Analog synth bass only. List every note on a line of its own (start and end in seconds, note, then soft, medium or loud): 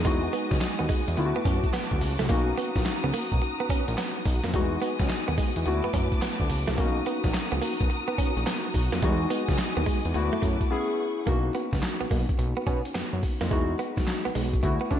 0.05 0.29 E2 loud
0.51 0.60 C#2 loud
0.80 0.88 D#2 medium
1.08 1.16 E2 medium
1.18 1.33 D2 loud
1.45 1.60 F#2 medium
1.91 2.00 D2 loud
2.02 2.17 C#2 loud
2.21 2.29 C2 loud
2.30 2.53 B1 loud
2.76 2.84 A#1 medium
3.04 3.12 C#2 medium
3.32 3.40 B1 medium
3.69 3.77 A#1 soft
3.88 3.96 A#1 medium
4.26 4.41 B1 loud
4.44 4.52 F2 medium
4.54 4.77 E2 loud
5.00 5.08 C#2 loud
5.29 5.37 D#2 medium
5.57 5.65 E2 medium
5.66 5.81 D2 loud
5.94 6.09 F#2 medium
6.40 6.48 D2 medium
6.50 6.65 C#2 loud
6.69 6.77 C2 loud
6.78 7.02 B1 loud
7.24 7.33 A#1 medium
7.52 7.61 C#2 medium
7.81 7.89 B1 medium
8.18 8.26 A#1 medium
8.37 8.45 A#1 loud
8.74 8.90 B1 loud
8.92 9.01 F2 medium
9.03 9.26 E2 loud
9.49 9.57 C#2 medium
9.77 9.85 D#2 medium
10.05 10.13 E2 loud
10.15 10.30 D2 loud
10.43 10.58 F#2 loud
11.27 11.50 B1 loud
11.73 11.81 C#2 medium
12.01 12.05 B1 soft
12.11 12.26 B1 loud
12.39 12.54 B1 loud
12.67 12.82 B2 loud
12.95 13.02 F#2 medium
13.13 13.21 F#2 loud
13.41 13.49 F2 medium
13.51 13.75 E2 loud
13.97 14.01 B1 soft
14.26 14.29 B1 soft
14.36 14.59 B1 medium
14.63 14.78 D2 loud
14.91 15.00 D3 loud